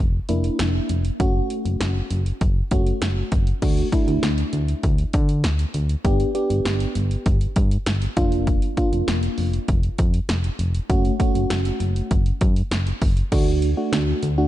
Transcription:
0.00 F1
0.29 F1 A#3 D4 E4, closed hi-hat
0.44 closed hi-hat
0.59 F1, snare, closed hi-hat
0.89 F1, closed hi-hat
1.05 closed hi-hat
1.20 F#1 A3 C#4 F#4, kick, closed hi-hat
1.50 closed hi-hat
1.65 F#1, closed hi-hat
1.80 F#1, snare, closed hi-hat
2.10 F#1, closed hi-hat
2.26 closed hi-hat
2.41 F#1, kick, closed hi-hat
2.71 F#1 A3 C#4 F#4, kick, closed hi-hat
2.87 closed hi-hat
3.02 F#1, snare, closed hi-hat
3.32 F#1, kick, closed hi-hat
3.47 closed hi-hat
3.62 D2 A3 D4 F#4, kick, closed hi-hat, crash
3.77 closed hi-hat
3.92 A3 D4 E4, kick, closed hi-hat
4.08 D2, closed hi-hat
4.23 D2, snare, closed hi-hat
4.38 closed hi-hat
4.53 D2, closed hi-hat
4.68 closed hi-hat
4.83 D2, kick, closed hi-hat
4.98 closed hi-hat
5.13 D3, kick, closed hi-hat
5.29 closed hi-hat
5.44 D2, snare, closed hi-hat
5.59 closed hi-hat
5.74 D2, closed hi-hat
5.89 closed hi-hat
6.04 G1 B3 D4 G4, kick, closed hi-hat
6.20 closed hi-hat
6.35 B3 D4 G4, closed hi-hat
6.50 G1, closed hi-hat
6.65 G1, snare, closed hi-hat
6.80 closed hi-hat
6.95 G1, closed hi-hat
7.11 closed hi-hat
7.26 G1, kick, closed hi-hat
7.41 closed hi-hat
7.56 G2, kick, closed hi-hat
7.71 closed hi-hat
7.86 G1, snare, closed hi-hat
8.02 closed hi-hat
8.17 F1 A#3 D4 F4, kick, closed hi-hat
8.32 closed hi-hat
8.47 kick, closed hi-hat
8.62 closed hi-hat
8.77 A#3 D4 F4, kick, closed hi-hat
8.93 F1, closed hi-hat
9.08 F1, snare, closed hi-hat
9.23 closed hi-hat
9.38 F1, open hi-hat
9.53 closed hi-hat
9.68 F1, kick, closed hi-hat
9.83 closed hi-hat
9.98 F2, kick, closed hi-hat
10.14 closed hi-hat
10.29 F1, snare, closed hi-hat
10.44 closed hi-hat
10.59 F1, closed hi-hat
10.75 closed hi-hat
10.90 F#1 A3 C#4 F#4, kick, closed hi-hat
11.05 closed hi-hat
11.20 A3 C#4 F#4, kick, closed hi-hat
11.35 F#1, closed hi-hat
11.50 F#1, snare, closed hi-hat
11.65 closed hi-hat
11.80 F#1, closed hi-hat
11.96 closed hi-hat
12.11 F#1, kick, closed hi-hat
12.26 closed hi-hat
12.41 F#2, kick, closed hi-hat
12.56 closed hi-hat
12.71 F#1, snare, closed hi-hat
12.87 closed hi-hat
13.02 F#1, kick, open hi-hat
13.17 closed hi-hat
13.32 D2 A3 D4 F#4, kick, closed hi-hat, crash
13.62 closed hi-hat
13.77 A3 D4 F#4
13.92 D2, snare, closed hi-hat
14.23 D2, closed hi-hat
14.38 A3 D4 F#4

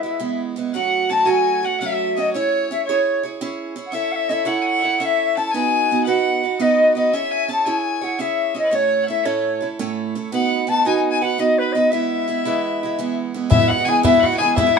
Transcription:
Already playing: E5
0.03 G#3 B3 E4
0.20 E3 G#3 B3 E4
0.56 E3 G#3 B3 E4
0.73 F#3 A3 C#4 F#4 F#5
1.09 F#3 A3 C#4 F#4 A5
1.25 F#3 A3 C#4 F#4 G#5
1.30 G#5
1.63 A3 C#4 F#4 F#5
1.80 F#3 A3 C#4 F#4 E5 F#5
1.86 E5
2.16 F#3 A3 C#4 F#4 D#5
2.33 C#4 E4 G#4 C#5
2.71 C#4 E4 G#4 C#5 E5
2.85 C#5
2.89 C#4 E4 G#4 C#5
3.23 E4 G#4 C#5
3.41 C#4 E4 G#4 C#5
3.76 C#4 E4 G#4 C#5
3.86 F#5
3.91 C#4 E4 A4 C#5 E5
4.12 E5 F#5
4.29 C#4 E4 A4 C#5 D#5 E5
4.45 C#4 E4 A4 C#5 F#5
4.62 G#5
4.67 F#5
4.79 C#5 E5 F#5
4.84 E4 A4
4.98 C#4 E4 A4 C#5 E5 F#5
5.05 E5
5.36 C#4 E4 A4 C#5 A5
5.45 A5
5.51 B3 D#4 F#4 G#5
5.55 B4
5.91 B3 D#4 F#4 B4
6.04 B4 F#5
6.08 B3 D#4 F#4
6.43 D#4 F#4 B4
6.59 B3 D#4 F#4 B4 D#5
6.94 B3 D#4 F#4 B4 D#5
7.12 C#4 E4 G#4 C#5 E5
7.31 G#5
7.48 C#4 E4 G#4 C#5 A5
7.65 C#4 E4 G#4 C#5 G#5
7.69 G#5
8.01 E4 G#4 C#5 F#5
8.18 C#4 E4 G#4 C#5 E5
8.54 C#4 E4 G#4 C#5 D#5
8.64 B4
8.70 A2 A3 C#4 E4 A4 C#5
8.75 C#5
9.03 E5 F#5
9.08 A3 C#4 E4 A4 E5
9.23 A2 A3 C#4 E4 A4 C#5
9.61 C#4 E4 A4
9.79 A2 A3 C#4 E4 A4
10.15 A3 C#4 E4 A4
10.32 B3 D#4 F#4 B4 F#5
10.67 B3 D#4 F#4 B4 A5
10.85 B3 D#4 F#4 B4 G#5
10.96 G#5
11.10 G#5
11.22 D#4 F#4 B4 F#5
11.38 B3 D#4 F#4 B4 D#5
11.58 B4
11.72 B3 D#4 D#5
11.76 F#4 B4
11.91 E3 G#3 B3 E4 E5
12.28 E3 G#3 B3 E4
12.45 E3 G#3 B3 E4
12.83 G#3 B3 E4
12.99 E3 G#3 B3 E4
13.34 E3 G#3 B3 E4
13.50 E3 G#3 B3 E4 E5, bodhran
13.60 G#3 B3 E4
13.68 F#4 F#5, bodhran
13.78 G#3 B3 E4
13.85 E3 G#3 B3 E4 G#4 G#5
13.89 G#5
14.03 E3 G#3 B3 E4 E5, bodhran
14.13 G#3 B3 E4
14.20 F#4 F#5, bodhran
14.25 F#5
14.32 G#3 B3 E4
14.37 E3 G#4 G#5
14.42 G#3 B3 E4
14.55 E3 G#3 B3 E4 E5, bodhran
14.67 G#3 B3 E4
14.76 F#4

